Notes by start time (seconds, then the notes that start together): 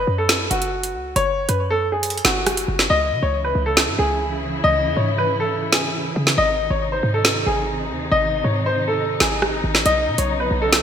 Already playing: B4
0.07 F#2
0.18 A4
0.29 snare, closed hi-hat
0.51 F#1 F#4, closed hi-hat
0.62 closed hi-hat
0.83 closed hi-hat
0.94 C#2
1.16 F#1 C#5, closed hi-hat
1.49 F#2 B4, closed hi-hat
1.70 A4
1.92 G#4
2.03 closed hi-hat
2.10 closed hi-hat
2.18 closed hi-hat
2.25 F#1 F#4, snare, closed hi-hat
2.46 cross-stick, closed hi-hat
2.57 closed hi-hat
2.68 F#1
2.79 snare
2.90 C#2 C#3 E3 E4 D#5
3.12 C#3
3.23 C#2 C#5
3.44 B4
3.55 C#2
3.66 A4
3.77 snare
3.88 G#2
3.99 C#2 G#4
4.64 C#2 D#5
4.86 E2
4.96 G#2 C#5
5.18 B4
5.40 A4
5.73 G#4, snare
6.16 C#3
6.27 snare
6.38 G#1 C3 D#3 D#4 D#5
6.70 G#1 C#5
6.92 C5
7.03 G#2
7.14 A4
7.25 snare
7.47 G#1 G#4
7.90 D#2
8.12 G#1 D#5
8.44 G#2 C#5
8.66 C5
8.88 A4
9.20 G#1 G#4, snare
9.42 cross-stick
9.64 G#1
9.75 snare
9.86 B1 C#3 F#3 B3 D#5, closed hi-hat
10.07 B2
10.18 B1 C#5, closed hi-hat
10.40 B4
10.51 B1
10.62 A4
10.73 snare, closed hi-hat